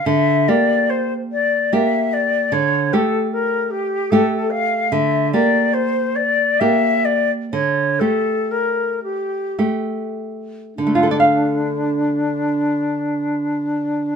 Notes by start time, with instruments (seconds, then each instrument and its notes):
0.06 nylon-string guitar D3, flute E5
0.48 nylon-string guitar A#3 G4, flute D5
0.90 flute C5
1.32 flute D5
1.73 nylon-string guitar A#3 G4, flute E5
2.13 flute D5
2.52 nylon-string guitar D3, flute C#5
2.93 nylon-string guitar A3 G4, flute A4
3.32 flute A#4
3.71 flute G4
4.10 nylon-string guitar A3 G4, flute A4
4.50 flute F5
4.92 nylon-string guitar D3, flute E5
5.32 nylon-string guitar A#3 G4, flute D5
5.74 flute C5
6.16 flute D5
6.60 nylon-string guitar A#3 G4, flute E5
7.05 flute D5
7.52 nylon-string guitar D3, flute C#5
7.99 nylon-string guitar A3 G4, flute A4
8.51 flute A#4
9.03 flute G4
9.59 nylon-string guitar A3 G4
10.76 nylon-string guitar D3, flute D4
10.87 nylon-string guitar A3
10.95 nylon-string guitar F4
11.03 nylon-string guitar A4
11.11 nylon-string guitar D5
11.20 nylon-string guitar F5